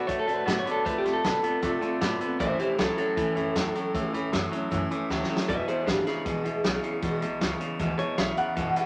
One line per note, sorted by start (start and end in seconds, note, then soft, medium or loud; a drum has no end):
0.07 0.23 A2 medium
0.07 0.25 D3 medium
0.07 0.28 D3 medium
0.07 0.25 A3 medium
0.07 0.28 A3 medium
0.07 0.28 D4 medium
0.07 0.26 F#4 medium
0.07 0.19 C#5 loud
0.07 kick loud
0.07 closed hi-hat medium
0.19 0.34 A4 medium
0.26 0.42 B2 medium
0.26 0.44 D3 medium
0.26 0.45 A3 medium
0.26 0.48 D4 soft
0.26 0.47 F#4 medium
0.26 closed hi-hat medium
0.31 0.47 A3 soft
0.31 0.46 B4 medium
0.46 0.62 A2 medium
0.46 0.64 D3 medium
0.46 0.66 D3 medium
0.46 0.67 A3 medium
0.46 0.64 B3 medium
0.46 0.66 D4 medium
0.46 0.60 F#4 medium
0.46 snare loud
0.46 closed hi-hat medium
0.50 0.64 F#4 medium
0.59 0.71 C#5 loud
0.65 0.83 D3 medium
0.65 0.85 A3 soft
0.65 0.83 B3 medium
0.65 0.86 D4 soft
0.65 0.85 F#4 medium
0.65 muted upright bass stroke medium
0.65 closed hi-hat medium
0.71 0.85 A4 medium
0.85 1.00 D2 medium
0.85 1.03 D3 medium
0.85 1.05 D3 medium
0.85 1.03 A3 medium
0.85 1.05 A3 medium
0.85 1.04 C4 medium
0.85 1.03 F4 medium
0.85 0.98 B4 medium
0.85 kick loud
0.85 closed hi-hat medium
0.98 1.11 G4 medium
1.04 1.20 A2 medium
1.04 1.22 D3 medium
1.04 1.23 A3 medium
1.04 1.24 A3 soft
1.04 1.25 C4 soft
1.04 1.24 F4 medium
1.04 snare soft
1.04 closed hi-hat medium
1.13 1.87 A4 loud
1.24 1.39 B2 medium
1.24 1.42 D3 medium
1.24 1.44 D3 medium
1.24 1.44 A3 medium
1.24 1.42 B3 medium
1.24 1.44 C4 medium
1.24 1.42 F4 medium
1.24 kick medium
1.24 snare loud
1.24 closed hi-hat medium
1.43 1.61 D3 medium
1.43 1.62 A3 soft
1.43 1.61 B3 medium
1.43 1.63 C4 medium
1.43 1.63 F4 soft
1.43 muted upright bass stroke medium
1.43 closed hi-hat medium
1.62 1.77 C3 loud
1.62 1.80 D3 medium
1.62 1.82 D3 loud
1.62 1.80 A3 medium
1.62 1.82 A3 medium
1.62 1.83 C4 medium
1.62 1.81 F4 medium
1.62 kick loud
1.62 closed hi-hat medium
1.81 1.99 D3 medium
1.81 2.00 A3 medium
1.81 2.01 A3 medium
1.81 2.02 C4 medium
1.81 2.01 F4 medium
1.81 muted upright bass stroke medium
1.81 closed hi-hat medium
2.01 2.16 A2 loud
2.01 2.19 D3 medium
2.01 2.21 D3 medium
2.01 2.21 A3 medium
2.01 2.19 B3 medium
2.01 2.19 F4 medium
2.01 snare loud
2.01 closed hi-hat medium
2.21 2.38 D3 medium
2.21 2.40 A3 soft
2.21 2.38 B3 loud
2.21 2.41 C4 medium
2.21 2.40 F4 medium
2.21 muted upright bass stroke medium
2.21 closed hi-hat medium
2.40 2.55 A1 medium
2.40 2.57 A2 medium
2.40 2.60 A2 medium
2.40 2.58 E3 medium
2.40 2.60 E3 medium
2.40 2.60 A3 medium
2.40 2.59 C#4 medium
2.40 2.57 E4 medium
2.40 2.59 C5 medium
2.40 2.59 E5 medium
2.40 kick loud
2.40 closed hi-hat medium
2.58 2.77 A2 medium
2.58 2.77 E3 medium
2.58 2.78 A3 soft
2.58 2.79 C#4 soft
2.58 2.78 E4 medium
2.58 2.78 G4 medium
2.58 2.79 C5 medium
2.58 muted upright bass stroke medium
2.58 closed hi-hat medium
2.78 2.93 C#2 medium
2.78 2.96 A2 medium
2.78 2.98 E3 medium
2.78 2.96 F#3 loud
2.78 2.99 A3 medium
2.78 2.97 C#4 medium
2.78 2.97 E4 medium
2.78 2.96 E4 medium
2.78 2.97 A4 medium
2.78 kick medium
2.78 snare loud
2.78 closed hi-hat medium
2.97 3.15 A2 medium
2.97 3.16 F#3 medium
2.97 3.17 A3 soft
2.97 3.18 C#4 medium
2.97 3.17 E4 medium
2.97 4.10 A4 loud
2.97 muted upright bass stroke medium
2.97 closed hi-hat medium
3.17 3.34 A2 medium
3.17 3.37 A2 medium
3.17 3.35 E3 medium
3.17 3.37 E3 medium
3.17 3.37 A3 medium
3.17 3.37 C#4 medium
3.17 3.35 E4 medium
3.17 kick loud
3.17 closed hi-hat medium
3.35 3.50 F#2 medium
3.35 3.53 A2 medium
3.35 3.54 E3 medium
3.35 3.56 C#4 medium
3.35 3.56 E4 medium
3.35 closed hi-hat medium
3.40 3.55 A3 soft
3.55 3.70 E2 loud
3.55 3.73 A2 medium
3.55 3.75 E3 medium
3.55 3.73 F#3 medium
3.55 3.75 A3 medium
3.55 3.75 C#4 medium
3.55 3.74 E4 medium
3.55 snare loud
3.55 closed hi-hat medium
3.75 3.92 A2 medium
3.75 3.93 F#3 medium
3.75 3.95 A3 medium
3.75 3.95 C#4 medium
3.75 3.94 E4 medium
3.75 closed hi-hat medium
3.94 4.09 A1 loud
3.94 4.12 A2 medium
3.94 4.14 A2 medium
3.94 4.12 E3 medium
3.94 4.14 E3 medium
3.94 4.15 A3 loud
3.94 4.14 C#4 medium
3.94 4.12 E4 loud
3.94 kick loud
3.94 closed hi-hat medium
4.13 4.28 E2 medium
4.13 4.31 A2 medium
4.13 4.31 E3 medium
4.13 4.33 A3 medium
4.13 4.34 C#4 medium
4.13 4.33 E4 medium
4.13 closed hi-hat medium
4.32 4.48 F#2 medium
4.32 4.50 A2 medium
4.32 4.52 E3 medium
4.32 4.50 F#3 medium
4.32 4.53 A3 medium
4.32 4.53 C#4 medium
4.32 kick medium
4.32 snare loud
4.32 closed hi-hat medium
4.36 4.51 E4 medium
4.51 4.69 A2 medium
4.51 4.70 F#3 medium
4.51 4.72 C#4 medium
4.51 4.72 E4 medium
4.51 muted upright bass stroke medium
4.51 closed hi-hat medium
4.56 4.71 A3 soft
4.71 4.86 F#2 medium
4.71 4.89 A2 medium
4.71 4.91 A2 medium
4.71 4.89 E3 medium
4.71 4.91 E3 medium
4.71 4.91 A3 medium
4.71 4.91 C#4 loud
4.71 4.89 E4 loud
4.71 kick loud
4.71 closed hi-hat medium
4.90 5.08 A2 medium
4.90 5.09 E3 medium
4.90 5.09 A3 medium
4.90 5.10 C#4 medium
4.90 5.10 E4 medium
4.90 closed hi-hat medium
5.09 5.24 D2 medium
5.09 5.28 A2 medium
5.09 5.29 E3 medium
5.09 5.28 F#3 loud
5.09 5.30 A3 medium
5.09 5.30 C#4 medium
5.09 5.28 E4 medium
5.09 snare medium
5.23 snare medium
5.29 5.47 A2 medium
5.29 5.47 F#3 medium
5.29 5.50 A3 medium
5.29 5.50 C#4 medium
5.29 5.49 E4 medium
5.29 muted upright bass stroke medium
5.36 snare loud
5.48 5.63 E1 loud
5.48 5.68 E2 medium
5.48 5.66 E2 medium
5.48 5.68 B2 medium
5.48 5.66 B2 medium
5.48 5.69 E3 medium
5.48 5.68 G#3 medium
5.48 5.68 B3 medium
5.48 5.66 E4 medium
5.48 5.68 B4 medium
5.48 5.68 E5 loud
5.48 kick loud
5.48 closed hi-hat medium
5.68 5.85 E2 medium
5.68 5.86 B2 medium
5.68 5.85 E3 soft
5.68 5.87 G#3 soft
5.68 5.88 B3 medium
5.68 5.87 E4 soft
5.68 5.86 G#4 medium
5.68 5.87 C5 medium
5.68 muted upright bass stroke medium
5.68 closed hi-hat medium
5.86 6.02 G#1 medium
5.86 6.04 E2 medium
5.86 6.04 C#3 medium
5.86 6.06 E3 medium
5.86 6.07 G#3 medium
5.86 6.06 B3 medium
5.86 6.05 D4 medium
5.86 6.05 E4 medium
5.86 6.06 G4 loud
5.86 kick medium
5.86 snare loud
5.86 closed hi-hat medium
6.07 6.24 E2 medium
6.07 6.24 C#3 medium
6.07 6.26 E3 soft
6.07 6.26 G#3 soft
6.07 6.26 B3 medium
6.07 6.26 E4 medium
6.07 7.19 G#4 loud
6.07 muted upright bass stroke medium
6.07 snare soft
6.07 closed hi-hat medium
6.25 6.40 B1 loud
6.25 6.43 E2 medium
6.25 6.45 E2 medium
6.25 6.43 B2 medium
6.25 6.46 B2 medium
6.25 6.46 E3 medium
6.25 6.46 G#3 medium
6.25 6.45 B3 medium
6.25 6.44 E4 medium
6.25 kick loud
6.25 closed hi-hat medium
6.44 6.60 D2 medium
6.44 6.62 E2 medium
6.44 6.62 B2 medium
6.44 6.63 E3 soft
6.44 6.64 G#3 soft
6.44 6.65 B3 soft
6.44 6.64 E4 medium
6.44 closed hi-hat medium
6.64 6.79 B1 loud
6.64 6.82 E2 medium
6.64 6.82 C#3 loud
6.64 6.84 E3 medium
6.64 6.84 G#3 medium
6.64 6.83 B3 medium
6.64 6.82 E4 medium
6.64 snare loud
6.64 closed hi-hat medium
6.83 7.01 E2 medium
6.83 7.01 C#3 medium
6.83 7.02 E3 medium
6.83 7.03 G#3 medium
6.83 7.03 B3 medium
6.83 7.03 E4 medium
6.83 muted upright bass stroke medium
6.83 closed hi-hat medium
7.02 7.22 E2 medium
7.02 7.20 E2 medium
7.02 7.22 B2 medium
7.02 7.21 B2 medium
7.02 7.23 E3 medium
7.02 7.23 G#3 medium
7.02 7.22 B3 loud
7.02 7.21 E4 loud
7.02 kick loud
7.02 closed hi-hat medium
7.21 7.36 B1 loud
7.21 7.39 E2 medium
7.21 7.40 B2 medium
7.21 7.40 E3 soft
7.21 7.41 G#3 medium
7.21 7.42 B3 medium
7.21 7.41 E4 medium
7.21 closed hi-hat medium
7.41 7.56 C#2 medium
7.41 7.59 E2 medium
7.41 7.59 C#3 medium
7.41 7.61 E3 medium
7.41 7.61 G#3 medium
7.41 7.60 B3 medium
7.41 7.59 E4 medium
7.41 kick medium
7.41 snare loud
7.41 closed hi-hat medium
7.60 7.78 E2 medium
7.60 7.78 C#3 medium
7.60 7.79 E3 soft
7.60 7.79 G#3 soft
7.60 7.80 B3 medium
7.60 7.80 E4 medium
7.60 muted upright bass stroke medium
7.60 closed hi-hat medium
7.79 7.94 D2 medium
7.79 7.99 E2 medium
7.79 7.97 E2 medium
7.79 8.00 B2 medium
7.79 7.97 B2 medium
7.79 8.00 E3 medium
7.79 8.00 G#3 loud
7.79 7.99 B3 medium
7.79 7.98 E4 loud
7.79 kick loud
7.79 closed hi-hat medium
7.98 8.16 E2 medium
7.98 8.16 B2 medium
7.98 8.18 G#3 soft
7.98 8.19 B3 medium
7.98 8.18 E4 medium
7.98 8.18 C#5 loud
7.98 muted upright bass stroke medium
7.98 closed hi-hat medium
8.02 8.17 E3 soft
8.17 8.33 B1 loud
8.17 8.35 E2 medium
8.17 8.36 C#3 medium
8.17 8.38 E3 medium
8.17 8.38 G#3 medium
8.17 8.37 B3 medium
8.17 8.36 E4 medium
8.17 8.37 E5 medium
8.17 snare loud
8.17 closed hi-hat medium
8.37 8.55 E2 medium
8.37 8.55 C#3 medium
8.37 8.56 E3 soft
8.37 8.56 G#3 soft
8.37 8.57 B3 medium
8.37 8.57 E4 medium
8.37 8.86 F#5 loud
8.37 closed hi-hat medium
8.56 8.71 E1 loud
8.56 8.74 E2 medium
8.56 8.76 E2 medium
8.56 8.74 B2 medium
8.56 8.76 B2 medium
8.56 8.77 E3 medium
8.56 8.76 G#3 medium
8.56 8.75 B3 medium
8.56 8.74 E4 medium
8.56 kick loud
8.56 closed hi-hat medium
8.75 8.86 E2 medium
8.75 8.86 B2 medium
8.75 8.86 E3 soft
8.75 8.86 G#3 soft
8.75 8.86 B3 soft
8.75 8.86 E4 soft
8.75 muted upright bass stroke medium
8.75 snare soft
8.75 closed hi-hat medium